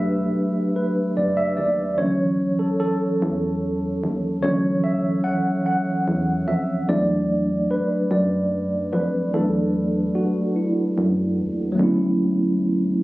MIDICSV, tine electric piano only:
0, 0, Header, 1, 2, 480
1, 0, Start_track
1, 0, Key_signature, 2, "major"
1, 0, Tempo, 816327
1, 1160, Time_signature, 6, 3, 24, 8
1, 7664, End_track
2, 0, Start_track
2, 0, Title_t, "Tine electric piano"
2, 0, Program_c, 0, 4
2, 0, Control_c, 0, 64, 127
2, 0, Note_on_c, 0, 54, 59
2, 0, Note_on_c, 0, 57, 52
2, 0, Note_on_c, 0, 62, 62
2, 0, Note_on_c, 0, 67, 69
2, 0, Note_on_c, 0, 71, 99
2, 0, Note_on_c, 0, 76, 92
2, 182, Note_off_c, 0, 76, 0
2, 447, Note_off_c, 0, 71, 0
2, 447, Note_on_c, 0, 71, 70
2, 688, Note_on_c, 0, 74, 89
2, 691, Note_off_c, 0, 71, 0
2, 796, Note_off_c, 0, 74, 0
2, 805, Note_on_c, 0, 76, 94
2, 923, Note_on_c, 0, 74, 76
2, 926, Note_off_c, 0, 76, 0
2, 1145, Note_off_c, 0, 74, 0
2, 1160, Note_on_c, 0, 52, 52
2, 1162, Note_off_c, 0, 54, 0
2, 1162, Note_on_c, 0, 54, 52
2, 1164, Note_on_c, 0, 73, 102
2, 1165, Note_on_c, 0, 61, 65
2, 1169, Control_c, 0, 64, 0
2, 1171, Note_off_c, 0, 57, 0
2, 1171, Note_off_c, 0, 67, 0
2, 1172, Note_off_c, 0, 62, 0
2, 1270, Control_c, 0, 64, 127
2, 1479, Note_off_c, 0, 52, 0
2, 1481, Note_off_c, 0, 54, 0
2, 1482, Note_off_c, 0, 61, 0
2, 1524, Note_on_c, 0, 69, 83
2, 1533, Note_off_c, 0, 73, 0
2, 1638, Note_off_c, 0, 69, 0
2, 1645, Note_on_c, 0, 69, 80
2, 2339, Note_off_c, 0, 69, 0
2, 2596, Note_on_c, 0, 52, 62
2, 2599, Note_on_c, 0, 54, 55
2, 2602, Note_on_c, 0, 73, 109
2, 2604, Note_on_c, 0, 61, 61
2, 2844, Note_on_c, 0, 76, 93
2, 2848, Note_off_c, 0, 73, 0
2, 3081, Note_on_c, 0, 78, 101
2, 3089, Note_off_c, 0, 76, 0
2, 3295, Note_off_c, 0, 52, 0
2, 3296, Note_off_c, 0, 54, 0
2, 3299, Note_off_c, 0, 61, 0
2, 3321, Note_off_c, 0, 78, 0
2, 3328, Note_on_c, 0, 78, 85
2, 3781, Note_off_c, 0, 78, 0
2, 3809, Note_on_c, 0, 76, 81
2, 4044, Note_on_c, 0, 54, 60
2, 4046, Note_on_c, 0, 57, 53
2, 4049, Control_c, 0, 64, 0
2, 4050, Note_on_c, 0, 62, 66
2, 4050, Note_on_c, 0, 74, 99
2, 4052, Note_off_c, 0, 76, 0
2, 4160, Control_c, 0, 64, 127
2, 4532, Note_on_c, 0, 71, 95
2, 4540, Note_off_c, 0, 74, 0
2, 4739, Note_off_c, 0, 54, 0
2, 4739, Note_off_c, 0, 57, 0
2, 4742, Note_off_c, 0, 62, 0
2, 4769, Note_on_c, 0, 74, 77
2, 4773, Note_off_c, 0, 71, 0
2, 5249, Note_on_c, 0, 71, 85
2, 5259, Note_off_c, 0, 74, 0
2, 5468, Note_off_c, 0, 71, 0
2, 5485, Note_on_c, 0, 54, 57
2, 5487, Note_on_c, 0, 57, 54
2, 5492, Note_on_c, 0, 69, 95
2, 5493, Note_on_c, 0, 62, 58
2, 5802, Note_off_c, 0, 54, 0
2, 5803, Note_off_c, 0, 57, 0
2, 5806, Note_off_c, 0, 62, 0
2, 5969, Note_on_c, 0, 66, 86
2, 5980, Note_off_c, 0, 69, 0
2, 6210, Note_on_c, 0, 64, 62
2, 6212, Note_off_c, 0, 66, 0
2, 6661, Note_off_c, 0, 64, 0
2, 6891, Note_on_c, 0, 54, 89
2, 6909, Note_on_c, 0, 57, 80
2, 6924, Note_on_c, 0, 59, 75
2, 6927, Control_c, 0, 64, 0
2, 6940, Note_on_c, 0, 61, 75
2, 6959, Note_on_c, 0, 64, 91
2, 7041, Control_c, 0, 64, 127
2, 7664, Note_off_c, 0, 54, 0
2, 7664, Note_off_c, 0, 57, 0
2, 7664, Note_off_c, 0, 59, 0
2, 7664, Note_off_c, 0, 61, 0
2, 7664, Note_off_c, 0, 64, 0
2, 7664, End_track
0, 0, End_of_file